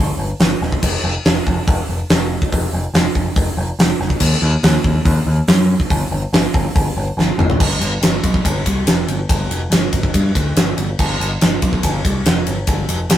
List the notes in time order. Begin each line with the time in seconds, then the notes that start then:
Already playing: G1
0.19 G1
0.40 G1, snare, open hi-hat
0.61 E1, snare
0.72 kick
0.83 F1, kick, crash
1.04 F1
1.25 F1, snare, open hi-hat
1.47 F1, kick
1.67 F1, kick, open hi-hat
1.89 F1
2.10 F1, snare, open hi-hat
2.42 kick
2.52 F1, kick, open hi-hat
2.73 F1
2.94 F1, snare, open hi-hat
3.15 F1, kick
3.36 F1, kick, open hi-hat
3.57 F1
3.79 F1, snare, open hi-hat
4.00 F1, snare
4.10 kick
4.20 D#2, kick, crash
4.42 D#2
4.63 D#2, snare, open hi-hat
4.84 D#2, kick
5.05 D#2, kick, open hi-hat
5.27 D#2
5.48 F#2, snare, open hi-hat
5.80 kick
5.90 G1, kick, open hi-hat
6.11 G1
6.33 G1, snare, open hi-hat
6.54 G1, kick
6.75 G1, kick, open hi-hat
6.97 G1
7.17 G1, snare
7.38 G1, mid tom
7.50 floor tom
7.60 G1, kick, crash
7.80 G1, ride
8.02 G1, snare, ride
8.24 B1, kick, ride
8.34 kick
8.45 G1, kick, ride
8.66 C2, kick, ride
8.87 F1, snare, ride
9.07 G1, ride
9.29 G1, kick, ride
9.50 F1, ride
9.70 G1, snare, ride
9.93 G1, kick, ride
10.03 kick
10.14 G2, kick, ride
10.35 D2, kick, ride
10.56 G1, snare, ride
10.77 G1, ride
10.99 G1, kick, crash
11.20 G1, ride
11.41 G1, snare, ride
11.62 B1, kick, ride
11.73 kick
11.83 G1, kick, ride
12.05 C2, kick, ride
12.26 F1, snare, ride
12.47 G1, ride
12.67 G1, kick, ride
12.89 F1, ride
13.10 G1, snare, ride